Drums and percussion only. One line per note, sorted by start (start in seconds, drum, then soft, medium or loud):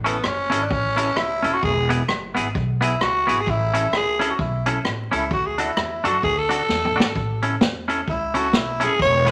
0.06 closed hi-hat medium
0.24 cross-stick loud
0.52 closed hi-hat loud
0.71 kick loud
0.98 closed hi-hat medium
1.16 cross-stick loud
1.44 closed hi-hat medium
1.63 kick loud
1.90 closed hi-hat medium
2.08 cross-stick loud
2.36 closed hi-hat medium
2.55 kick loud
2.82 closed hi-hat loud
3.01 cross-stick loud
3.29 closed hi-hat medium
3.47 kick loud
3.74 closed hi-hat medium
3.93 cross-stick loud
4.21 closed hi-hat loud
4.39 kick loud
4.66 closed hi-hat medium
4.85 cross-stick loud
5.13 closed hi-hat medium
5.31 kick loud
5.58 closed hi-hat medium
5.77 cross-stick loud
6.05 closed hi-hat medium
6.23 kick loud
6.50 closed hi-hat medium
6.69 snare medium
6.85 mid tom medium
7.00 snare loud
7.15 kick loud
7.42 closed hi-hat medium
7.61 snare loud
7.89 closed hi-hat medium
8.08 kick medium
8.35 closed hi-hat medium
8.53 snare loud
8.81 closed hi-hat medium
8.99 kick loud
9.27 closed hi-hat medium